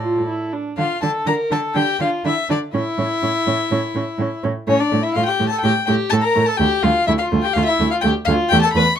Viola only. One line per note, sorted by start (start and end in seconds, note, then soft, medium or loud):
0.02 0.27 F4 medium
0.27 0.54 E4 soft
0.53 0.76 D4 soft
0.77 0.85 D4 medium
1.02 1.10 D4 soft
1.27 1.35 D4 medium
1.52 1.60 D4 medium
1.76 1.84 D4 medium
2.01 2.09 D4 medium
2.26 2.34 D4 medium
2.50 2.58 D4 medium
2.74 2.82 C#4 medium
2.98 3.06 C#4 soft
3.22 3.30 C#4 medium
3.47 3.55 C#4 medium
3.71 3.79 C#4 medium
3.96 4.04 C#4 medium
4.20 4.28 C#4 medium
4.43 4.51 C#4 medium
4.67 4.75 A3 medium
4.92 5.00 A3 medium
5.16 5.24 A3 medium
5.40 5.48 A3 medium
5.64 5.72 A3 medium
5.87 5.95 A3 medium
6.11 6.19 A3 medium
6.35 6.43 A3 medium
6.59 6.67 A3 medium
6.83 6.91 A3 medium
7.08 7.16 A3 medium
7.32 7.40 A3 medium
7.56 7.64 A3 medium
7.80 7.88 A3 medium
8.04 8.12 A3 medium
8.28 8.36 A3 medium
8.52 8.60 A3 medium
8.75 8.83 A3 medium